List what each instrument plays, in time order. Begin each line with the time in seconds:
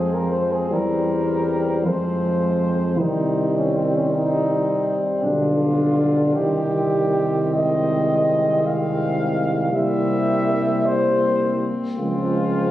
Already playing: tuba F2, trombone F3, euphonium G#3, french horn section C4, cornet G#4
0.14 cornet A#4
0.31 cornet C5
0.52 cornet G#4
0.70 tuba E2, euphonium G3, trombone G3, cornet A#4
1.84 tuba F2, trombone F3, euphonium G#3, cornet C5
2.97 tuba C2, trombone D#3, euphonium G3, french horn section C4, cornet D#4
3.57 cornet C#4
3.76 cornet C4
3.95 cornet C#4
4.13 cornet D#4
5.21 tuba B1, trombone D3, french horn section D4, cornet F4
6.34 tuba C2, trombone D#3, french horn section C4, cornet G4
7.52 euphonium G#3, cornet D#5
8.66 cornet F5
9.72 tuba C2, trombone G3, euphonium A#3, french horn section C4, cornet E5
10.86 cornet C5
11.98 tuba C#2, trombone F3, euphonium G#3, cornet F4